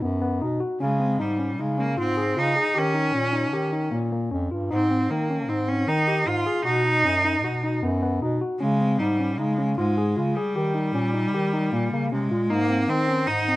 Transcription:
0.02 0.39 F#2 medium
0.02 0.20 B3 medium
0.22 0.39 B3 medium
0.41 0.61 B2 medium
0.41 0.59 D#4 medium
0.60 0.78 F#4 medium
0.80 1.18 C#3 medium
0.80 1.22 G#3 medium
0.80 0.98 C#4 medium
0.99 1.17 C4 medium
1.19 1.61 G#2 medium
1.19 1.62 G3 medium
1.19 1.37 D#4 medium
1.39 1.56 C#4 medium
1.59 1.96 C#3 medium
1.59 1.81 G#3 medium
1.59 1.76 D#4 medium
1.78 1.98 A#3 medium
1.78 1.95 C#4 medium
1.97 2.35 G#2 medium
1.97 2.40 C4 medium
1.97 2.15 F4 medium
2.17 2.34 G#4 medium
2.36 2.55 C#3 medium
2.36 2.79 D#4 medium
2.36 2.54 F4 medium
2.56 2.73 G#4 medium
2.75 3.13 D#3 medium
2.75 3.94 C#4 medium
2.75 2.92 G4 medium
2.94 3.12 D#4 medium
3.14 3.55 A#2 medium
3.14 3.31 C#4 medium
3.33 3.51 D#4 medium
3.53 3.90 D#3 medium
3.53 3.71 G4 medium
3.72 3.90 D#4 medium
3.91 4.29 A#2 medium
3.91 4.09 A#3 medium
4.12 4.29 A#3 medium
4.31 4.49 F2 medium
4.31 4.49 C#4 medium
4.51 4.69 G2 medium
4.51 4.68 F4 medium
4.70 5.08 G#2 medium
4.70 5.12 C4 medium
4.70 4.88 D#4 medium
4.91 5.08 C4 medium
5.10 5.50 D#3 medium
5.10 5.50 A#3 medium
5.10 5.27 D#4 medium
5.30 5.47 C#4 medium
5.49 5.85 G#2 medium
5.49 5.70 C4 medium
5.49 5.66 D#4 medium
5.68 5.85 C4 medium
5.68 5.90 C#4 medium
5.87 6.24 D#3 medium
5.87 6.29 D#4 medium
5.87 6.05 D#4 medium
6.08 6.25 G4 medium
6.27 6.45 G#2 medium
6.27 6.44 D#4 medium
6.27 6.64 F4 medium
6.46 6.63 G#4 medium
6.64 7.02 B2 medium
6.64 7.78 D#4 medium
6.64 6.83 F#4 medium
6.85 7.02 D#4 medium
7.05 7.45 F#2 medium
7.05 7.22 C#4 medium
7.25 7.42 D#4 medium
7.44 7.80 B2 medium
7.44 7.61 F#4 medium
7.64 7.81 D#4 medium
7.83 8.19 F#2 medium
7.83 8.00 B3 medium
8.03 8.19 B3 medium
8.22 8.40 B2 medium
8.22 8.39 D#4 medium
8.41 8.58 F#4 medium
8.59 8.97 C#3 medium
8.59 9.00 G#3 medium
8.59 8.78 C#4 medium
8.81 8.98 C4 medium
8.99 9.40 G#2 medium
8.99 9.39 G3 medium
8.99 9.17 D#4 medium
9.20 9.37 C#4 medium
9.37 9.75 C#3 medium
9.37 9.76 G#3 medium
9.37 9.56 D#4 medium
9.58 9.75 C#4 medium
9.77 10.15 G#2 medium
9.77 10.37 G#3 medium
9.77 9.95 F4 medium
9.98 10.14 G#4 medium
10.17 10.35 C#3 medium
10.17 10.34 F4 medium
10.35 12.11 G3 medium
10.35 10.54 G#4 medium
10.55 10.92 D#3 medium
10.55 10.73 G4 medium
10.74 10.92 D#4 medium
10.94 11.36 A#2 medium
10.94 11.12 C#4 medium
11.14 11.31 D#4 medium
11.34 11.71 D#3 medium
11.34 11.51 G4 medium
11.53 11.70 D#4 medium
11.73 11.91 A#2 medium
11.73 11.90 A#3 medium
11.92 12.10 C#3 medium
11.92 12.10 A#3 medium
12.12 12.29 C3 medium
12.12 12.51 G#3 medium
12.12 12.29 C#4 medium
12.31 12.48 A#2 medium
12.31 12.48 F4 medium
12.50 12.87 G#2 medium
12.50 12.91 A#3 medium
12.50 12.68 D#4 medium
12.70 12.87 C4 medium
12.88 13.26 D#3 medium
12.88 13.28 C4 medium
12.88 13.06 D#4 medium
13.09 13.26 C#4 medium
13.27 13.56 G#2 medium
13.27 13.56 D#4 medium
13.27 13.46 D#4 medium
13.48 13.56 C4 medium

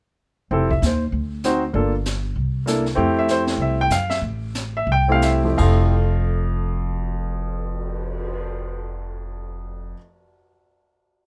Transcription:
0.51 0.80 F1 medium
0.51 0.68 C4 medium
0.51 0.69 E4 medium
0.51 0.69 G4 medium
0.51 0.69 A4 medium
0.51 brush sweep soft
0.71 0.82 E5 medium
0.71 kick medium
0.82 1.11 D#2 medium
0.82 snare soft
0.82 hi-hat pedal soft
0.86 1.03 C5 soft
1.12 1.71 D2 medium
1.12 brush sweep soft
1.44 1.61 C4 medium
1.44 1.61 D#4 medium
1.44 1.61 F#4 medium
1.44 1.62 C5 medium
1.44 snare medium
1.44 hi-hat pedal soft
1.73 2.33 G1 medium
1.73 1.91 A#3 medium
1.73 1.91 D4 medium
1.73 1.92 F4 soft
1.73 1.92 A4 medium
1.73 brush sweep soft
2.05 snare medium
2.05 hi-hat pedal soft
2.36 2.94 C2 medium
2.36 brush sweep soft
2.66 2.83 A#3 medium
2.66 2.84 D4 soft
2.66 2.84 E4 soft
2.66 2.84 A4 medium
2.66 snare medium
2.66 hi-hat pedal medium
2.86 snare soft
2.95 3.56 F2 medium
2.95 3.82 A3 medium
2.95 3.82 C4 medium
2.95 3.83 E4 medium
2.95 3.83 G4 medium
2.95 brush sweep soft
3.19 3.29 E5 medium
3.28 3.42 C5 medium
3.28 snare soft
3.28 hi-hat pedal soft
3.47 snare medium
3.57 3.88 C2 medium
3.57 brush sweep soft
3.62 3.79 E5 medium
3.81 3.92 G5 loud
3.90 4.20 F#2 medium
3.90 4.10 F5 medium
3.90 snare medium
3.90 hi-hat pedal medium
4.10 4.17 E5 medium
4.10 snare soft
4.21 4.85 A1 medium
4.21 brush sweep soft
4.55 snare medium
4.55 hi-hat pedal soft
4.77 4.89 E5 medium
4.87 5.54 C2 medium
4.87 brush sweep soft
4.92 5.11 G5 medium
5.08 5.42 A3 medium
5.08 5.42 C4 medium
5.08 5.42 E4 medium
5.08 5.42 G4 medium
5.08 5.24 F5 medium
5.22 5.50 E5 medium
5.22 snare soft
5.22 hi-hat pedal soft
5.44 5.56 F2 soft
5.44 5.58 A3 soft
5.44 5.92 C4 soft
5.44 5.92 E4 soft
5.44 5.92 G4 medium
5.58 9.92 F1 medium
5.58 9.96 F2 medium
5.58 9.96 F3 medium
5.58 9.97 A3 medium
5.58 9.97 F4 medium
5.58 9.92 F5 medium
5.58 kick medium
5.58 crash medium
5.81 cymbal swell soft

